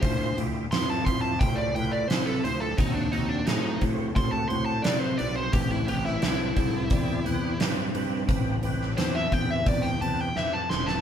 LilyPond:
<<
  \new Staff \with { instrumentName = "Lead electric guitar" } { \time 4/4 \key a \minor \tempo 4 = 87 c''8 r8 c'''16 a''16 c'''16 a''16 g''16 d''16 g''16 d''16 c''16 a'16 c''16 a'16 | dis'16 d'16 dis'16 d'16 dis'8 r8 bis''16 a''16 bis''16 a''16 d''16 bis'16 d''16 bis'16 | g'16 e'16 g'16 e'16 e'2 r4 | r4 c''16 e''16 g''16 e''16 d''16 g''16 a''16 g''16 e''16 a''16 c'''16 a''16 | }
  \new Staff \with { instrumentName = "Tonewheel organ" } { \time 4/4 \key a \minor <e' f' c''>8 <e' f' g'>8 <e' f' c''>8 <e' f' c''>8 <e' f' c''>8 <e' f' b'>8 <e' f' b'>8 <e' f' c''>8 | <bis fis' a'>8 <bis fis' a'>8 <bis fis' gis'>8 <bis fis' bis'>8 <bis fis' a'>8 <bis fis' bis'>8 <bis fis' b'>8 <bis fis' b'>8 | <c' g' b'>8 <c' g' b'>8 <c' g' b'>8 <c' g' a'>8 <c' g' d''>8 <c' g' b'>8 <c' g' b'>8 <c' g' b'>8 | <c' g' b'>8 <c' g' b'>8 <c' g' b'>8 <c' g' b'>8 <c' g' b'>8 <c' g' b'>8 <c' g' b'>8 <c' g' b'>8 | }
  \new Staff \with { instrumentName = "Fingered electric bass" } { \clef bass \time 4/4 \key a \minor d,8 d,8 f,8 f,8 a,8 a,8 c8 d,8 | dis,4 a,8 a,8 a,8 a,8 bis,8 b,,8 | a,,8 a,,8 c,8 c,8 e,8 e,8 g,8 g,8 | a,,4 e,8 e,8 e,8 e,8 f,8 e,,8 | }
  \new DrumStaff \with { instrumentName = "Drums" } \drummode { \time 4/4 <hho bd>8 hho8 <hho sn>8 <hho bd>8 <hho bd>8 hho8 <hho sn>8 hho8 | <hho bd>8 hho8 <hho sn>8 <hho bd>8 <hho bd>8 hho8 <hho sn>8 hho8 | <hho bd>8 hho16 sn16 <hho sn>8 <hho bd>8 <hho bd>8 hho8 <hho sn>8 hho8 | <hho bd>8 hho16 sn16 <hho sn>8 <hho bd>8 <hho bd>16 sn16 hho8 sn8 sn16 sn16 | }
>>